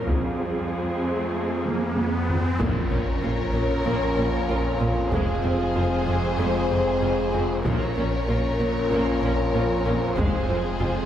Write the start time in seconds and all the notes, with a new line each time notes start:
Already playing: F3 F4, riser
0.07 F2 C4 G#4, taiko
1.65 taiko high
1.97 taiko high
2.29 taiko low
2.59 A#1 F2 A#2 F3 A#3 C#4 F4 A#4 C#5, taiko, impact
2.91 A#1 A#2 C#4
3.23 A#1 A#2 F4
3.54 A#1 A#2 C#4
3.86 A#1 A#2 A#3
4.17 A#1 A#2 C#4
4.49 A#1 A#2 F4
4.79 A#1 A#2 C#4
5.11 F1 F2 G#3 C4 G#4 C5, taiko
5.43 F1 F2 C4
5.75 F1 F2 F4
6.06 F1 F2 C4
6.38 F1 F2 G#3
6.70 F1 F2 C4
7.02 F1 F2 F4
7.33 F1 F2 C4
7.65 A#1 F2 A#2 F3 A#3 C#4 F4 A#4 C#5, taiko
7.96 A#1 A#2 C#4
8.28 A#1 A#2 F4
8.60 A#1 A#2 C#4
8.91 A#1 A#2 A#3
9.23 A#1 A#2 C#4
9.54 A#1 A#2 F4
9.85 A#1 A#2 C#4
10.17 F1 F2 G#3 C4 G#4 C5, taiko
10.49 F1 F2 C4
10.80 F1 F2 F4